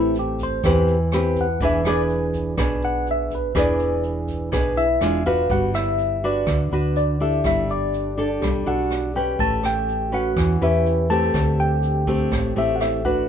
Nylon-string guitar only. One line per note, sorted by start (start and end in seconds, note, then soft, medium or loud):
0.00 0.62 A3 medium
0.00 0.60 C4 medium
0.00 0.61 G4 medium
0.00 0.61 B4 medium
0.65 1.59 E3 medium
0.65 0.96 C4 medium
0.65 0.96 G4 medium
0.65 0.96 B4 medium
1.13 1.46 C4 medium
1.13 1.46 G4 medium
1.13 1.46 B4 medium
1.62 2.56 E3 medium
1.62 1.82 D4 medium
1.62 1.82 G#4 medium
1.62 1.82 B4 medium
1.86 2.55 D4 medium
1.86 2.55 G#4 medium
1.86 2.55 B4 medium
2.58 3.53 B2 medium
2.58 3.51 D4 medium
2.58 3.52 G#4 medium
2.58 3.52 B4 medium
3.55 4.50 E3 medium
3.55 4.49 D4 medium
3.55 4.49 G#4 medium
3.55 4.49 B4 medium
4.52 4.99 B2 medium
4.52 4.84 D4 medium
4.52 4.84 G#4 medium
4.52 4.84 B4 medium
5.02 5.22 G#3 medium
5.02 5.22 D4 medium
5.02 5.22 F4 medium
5.26 5.71 D4 medium
5.26 5.71 F#4 medium
5.26 5.71 B4 medium
5.50 6.45 G3 medium
6.24 6.68 D4 medium
6.24 6.68 F#4 medium
6.24 6.69 B4 medium
6.48 7.43 D3 medium
6.73 7.17 D4 medium
6.73 7.17 F#4 medium
6.73 7.18 B4 medium
7.20 8.14 D4 medium
7.20 8.14 G4 medium
7.20 8.14 A4 medium
7.45 8.40 G3 medium
8.17 8.62 D4 medium
8.17 8.63 G4 medium
8.17 8.63 A4 medium
8.43 9.37 G3 medium
8.66 9.11 D4 medium
8.66 9.11 A4 medium
9.16 10.09 C#4 medium
9.16 10.09 G4 medium
9.16 10.09 B4 medium
9.39 10.34 A3 medium
10.12 10.57 C#4 medium
10.12 10.57 B4 medium
10.36 11.32 E3 medium
10.62 11.06 C#4 medium
10.62 11.06 G4 medium
10.62 11.07 B4 medium
11.10 12.03 A3 medium
11.10 12.04 C4 medium
11.10 12.04 G4 medium
11.34 12.29 D3 medium
12.07 12.52 A3 medium
12.07 12.53 C4 medium
12.07 12.53 G4 medium
12.31 13.26 A2 soft
12.56 13.01 A3 medium
12.56 13.01 C4 medium
12.56 13.01 G4 medium
13.05 13.29 D4 medium
13.05 13.29 F#4 medium
13.05 13.29 B4 medium